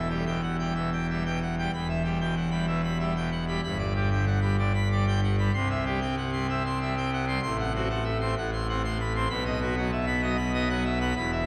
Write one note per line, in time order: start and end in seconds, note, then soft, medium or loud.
0.00 1.67 E1 medium
0.00 1.67 E2 medium
0.09 0.24 G3 medium
0.09 0.24 G4 medium
0.26 0.41 B2 medium
0.26 0.41 G5 medium
0.43 0.56 F#5 medium
0.59 0.74 G3 medium
0.59 0.73 G5 medium
0.75 0.89 B2 medium
0.75 0.90 E5 medium
0.93 1.06 G5 medium
1.10 1.23 G3 medium
1.10 1.23 E5 medium
1.26 1.40 B2 medium
1.26 1.39 G5 medium
1.42 1.55 F#5 medium
1.58 1.71 G3 medium
1.58 1.71 G5 medium
1.74 3.59 E1 medium
1.74 3.60 E2 medium
1.74 1.87 B5 loud
1.89 2.03 E5 medium
2.04 2.18 G3 medium
2.04 2.18 G4 medium
2.21 2.34 B2 medium
2.21 2.35 G5 medium
2.36 2.49 F#5 medium
2.51 2.65 G3 medium
2.51 2.65 B5 medium
2.67 2.81 B2 medium
2.67 2.81 E5 medium
2.84 2.98 B5 medium
3.00 3.13 G3 medium
3.00 3.14 E5 medium
3.16 3.30 B2 medium
3.16 3.30 G5 medium
3.31 3.44 F#5 medium
3.47 3.61 G3 medium
3.47 3.61 B5 medium
3.64 5.50 G1 medium
3.64 5.50 G2 medium
3.64 3.77 B5 loud
3.78 3.93 D5 medium
3.95 4.09 G3 medium
3.95 4.09 G4 medium
4.12 4.25 D3 medium
4.12 4.25 G5 medium
4.26 4.40 F#5 medium
4.42 4.56 G3 medium
4.42 4.56 B5 medium
4.58 4.72 D3 medium
4.58 4.72 D5 medium
4.74 4.88 B5 medium
4.92 5.05 G3 medium
4.92 5.05 D5 medium
5.07 5.20 D3 medium
5.07 5.21 G5 medium
5.23 5.36 F#5 medium
5.39 5.52 G3 medium
5.39 5.52 B5 medium
5.54 7.38 C2 medium
5.54 7.38 C3 medium
5.54 5.68 C6 loud
5.71 5.84 E5 medium
5.86 6.00 G3 medium
5.86 6.00 G4 medium
6.01 6.15 C4 medium
6.01 6.15 G5 medium
6.17 6.30 F#5 medium
6.33 6.47 G3 medium
6.33 6.46 C6 medium
6.49 6.63 C4 medium
6.49 6.63 E5 medium
6.66 6.79 C6 medium
6.82 6.95 G3 medium
6.82 6.94 E5 medium
6.97 7.10 C4 medium
6.97 7.10 G5 medium
7.13 7.25 F#5 medium
7.27 7.40 G3 medium
7.27 7.40 C6 medium
7.43 8.35 A1 medium
7.43 8.35 A2 medium
7.43 7.56 C6 loud
7.60 7.73 F#5 medium
7.75 7.88 C4 medium
7.75 7.88 F#4 medium
7.90 8.03 A3 medium
7.90 8.04 F#5 medium
8.04 8.18 E5 medium
8.21 8.34 C4 medium
8.21 8.34 C6 medium
8.37 9.28 A1 medium
8.37 9.27 A2 medium
8.37 8.51 F#5 medium
8.53 8.66 C6 medium
8.69 8.82 C4 medium
8.69 8.82 F#5 medium
8.84 8.98 A3 medium
8.84 8.98 C6 medium
9.00 9.13 B5 medium
9.15 9.28 C4 medium
9.15 9.28 C6 medium
9.29 11.13 B1 medium
9.29 11.13 B2 loud
9.29 9.44 B5 loud
9.45 9.59 D#5 medium
9.61 9.75 B3 medium
9.61 9.75 F#4 medium
9.77 9.90 F#3 medium
9.77 9.91 F#5 medium
9.92 10.05 E5 medium
10.06 10.21 B3 medium
10.06 10.21 B5 medium
10.21 10.36 F#3 medium
10.21 10.36 D#5 medium
10.37 10.52 B5 medium
10.54 10.68 B3 medium
10.54 10.68 D#5 medium
10.70 10.84 F#3 medium
10.70 10.84 F#5 loud
10.85 10.98 E5 medium
11.01 11.14 B3 medium
11.01 11.14 B5 medium
11.16 11.46 E1 loud
11.16 11.46 E2 loud
11.16 11.31 B5 loud
11.32 11.46 E5 medium